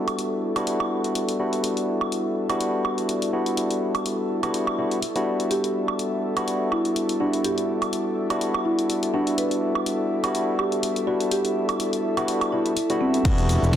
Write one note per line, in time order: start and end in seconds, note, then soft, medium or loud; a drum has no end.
0.00 0.53 G3 medium
0.00 0.53 B3 medium
0.00 0.53 D4 medium
0.00 0.53 E4 medium
0.00 13.76 E4 medium
0.00 0.53 F#4 medium
0.00 13.76 A4 medium
0.00 13.76 D5 medium
0.00 13.76 E5 medium
0.08 closed hi-hat soft
0.08 high woodblock medium
0.19 closed hi-hat medium
0.56 1.37 G3 medium
0.56 1.37 B3 medium
0.56 1.37 D4 medium
0.56 1.37 E4 medium
0.56 1.37 F#4 medium
0.56 closed hi-hat soft
0.56 high woodblock medium
0.67 closed hi-hat medium
0.80 high woodblock medium
1.04 closed hi-hat soft
1.15 closed hi-hat medium
1.29 closed hi-hat soft
1.39 2.46 G3 medium
1.39 2.46 B3 medium
1.39 2.46 D4 medium
1.39 2.46 E4 medium
1.39 2.46 F#4 medium
1.53 closed hi-hat soft
1.64 closed hi-hat medium
1.77 closed hi-hat soft
2.01 high woodblock medium
2.12 closed hi-hat medium
2.49 3.30 G3 medium
2.49 3.30 B3 medium
2.49 3.30 D4 medium
2.49 3.31 E4 medium
2.49 3.31 F#4 loud
2.49 closed hi-hat soft
2.49 high woodblock medium
2.61 closed hi-hat medium
2.85 high woodblock medium
2.98 closed hi-hat soft
3.09 closed hi-hat medium
3.22 closed hi-hat soft
3.33 4.40 G3 medium
3.33 4.40 B3 medium
3.33 4.40 D4 medium
3.33 4.40 E4 medium
3.33 4.40 F#4 medium
3.46 closed hi-hat soft
3.57 closed hi-hat medium
3.71 closed hi-hat soft
3.95 closed hi-hat soft
3.95 high woodblock medium
4.06 closed hi-hat medium
4.43 4.76 G3 medium
4.43 4.76 B3 medium
4.43 4.76 D4 medium
4.43 4.76 E4 medium
4.43 4.76 F#4 loud
4.43 closed hi-hat soft
4.43 high woodblock medium
4.54 closed hi-hat medium
4.67 high woodblock medium
4.78 4.99 G3 medium
4.78 4.99 B3 medium
4.78 4.99 D4 medium
4.78 4.99 E4 medium
4.78 4.99 F#4 medium
4.91 closed hi-hat soft
5.02 closed hi-hat medium
5.15 6.33 G3 medium
5.15 6.33 B3 medium
5.15 6.33 D4 medium
5.15 6.34 E4 medium
5.15 6.34 F#4 loud
5.15 closed hi-hat soft
5.40 closed hi-hat soft
5.51 5.66 G4 medium
5.51 closed hi-hat medium
5.64 closed hi-hat soft
5.88 high woodblock medium
5.99 closed hi-hat medium
6.36 7.17 G3 medium
6.36 7.18 B3 medium
6.36 7.18 D4 medium
6.36 7.18 E4 medium
6.36 7.18 F#4 loud
6.36 closed hi-hat soft
6.36 high woodblock medium
6.48 closed hi-hat medium
6.72 6.87 E4 medium
6.72 high woodblock medium
6.85 closed hi-hat soft
6.96 closed hi-hat medium
7.09 closed hi-hat soft
7.20 8.27 G3 medium
7.20 8.27 B3 medium
7.20 7.35 D4 medium
7.20 8.27 D4 medium
7.20 8.27 E4 medium
7.20 8.27 F#4 medium
7.33 closed hi-hat soft
7.44 7.59 G4 medium
7.44 closed hi-hat medium
7.58 closed hi-hat soft
7.82 closed hi-hat soft
7.82 high woodblock medium
7.93 closed hi-hat medium
8.30 9.11 G3 medium
8.30 9.11 B3 medium
8.30 9.11 D4 medium
8.30 9.11 E4 medium
8.30 9.11 F#4 loud
8.30 closed hi-hat soft
8.30 high woodblock medium
8.41 closed hi-hat medium
8.54 high woodblock medium
8.65 8.80 E4 medium
8.79 closed hi-hat soft
8.90 closed hi-hat medium
9.03 closed hi-hat soft
9.14 10.20 G3 medium
9.14 10.21 B3 medium
9.14 9.29 D4 medium
9.14 10.21 D4 medium
9.14 10.21 E4 medium
9.14 10.21 F#4 medium
9.27 closed hi-hat soft
9.38 9.53 B4 medium
9.38 closed hi-hat medium
9.51 closed hi-hat soft
9.75 high woodblock medium
9.86 closed hi-hat medium
10.24 11.05 G3 medium
10.24 11.05 B3 medium
10.24 11.05 D4 medium
10.24 11.05 E4 medium
10.24 11.05 F#4 loud
10.24 closed hi-hat medium
10.24 high woodblock medium
10.35 closed hi-hat medium
10.59 10.74 G4 medium
10.59 high woodblock medium
10.72 closed hi-hat soft
10.83 closed hi-hat medium
10.96 closed hi-hat soft
11.07 12.14 G3 medium
11.07 12.14 B3 medium
11.07 12.14 D4 medium
11.07 12.14 E4 medium
11.07 11.22 F#4 medium
11.07 12.14 F#4 medium
11.20 closed hi-hat soft
11.31 11.46 G4 medium
11.31 closed hi-hat medium
11.45 closed hi-hat soft
11.69 closed hi-hat soft
11.69 high woodblock medium
11.80 closed hi-hat medium
11.93 closed hi-hat soft
12.17 12.50 G3 medium
12.17 12.50 B3 medium
12.17 12.50 D4 medium
12.17 12.50 E4 medium
12.17 12.50 F#4 loud
12.17 closed hi-hat medium
12.17 high woodblock medium
12.28 closed hi-hat medium
12.41 closed hi-hat soft
12.41 high woodblock medium
12.52 12.73 G3 medium
12.52 12.73 B3 medium
12.52 12.73 D4 medium
12.52 12.67 E4 medium
12.52 12.73 E4 medium
12.52 12.73 F#4 medium
12.66 closed hi-hat soft
12.77 closed hi-hat medium
12.90 13.24 G3 medium
12.90 13.24 B3 medium
12.90 13.24 D4 medium
12.90 13.24 E4 medium
12.90 13.24 F#4 loud
12.90 closed hi-hat medium
13.01 13.16 C4 medium
13.14 closed hi-hat soft
13.25 13.56 E1 loud
13.25 13.76 G3 loud
13.25 13.76 B3 medium
13.25 13.76 D4 medium
13.25 13.76 E4 medium
13.25 13.76 F#4 loud
13.25 kick loud
13.25 closed hi-hat medium
13.25 crash loud
13.25 cabasa soft
13.38 closed hi-hat soft
13.38 cabasa soft
13.49 open hi-hat loud
13.49 cabasa medium
13.62 13.76 E1 medium
13.62 cabasa soft
13.73 kick loud
13.73 snare loud